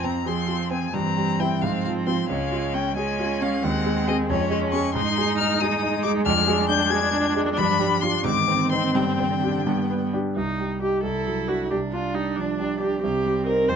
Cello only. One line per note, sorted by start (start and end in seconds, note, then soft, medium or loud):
0.00 0.22 F3 medium
0.26 0.92 F3 medium
0.94 1.63 E3 medium
1.62 2.28 F3 medium
2.29 2.95 G#3 medium
2.96 3.62 G#3 medium
3.63 4.29 G#3 medium
4.30 4.94 G#3 medium
4.95 7.54 G#3 medium
7.58 8.21 F3 medium
8.24 8.91 D#3 medium
8.94 10.11 D3 medium
11.03 11.73 E4 medium
11.71 13.02 D4 medium
13.03 13.76 C4 medium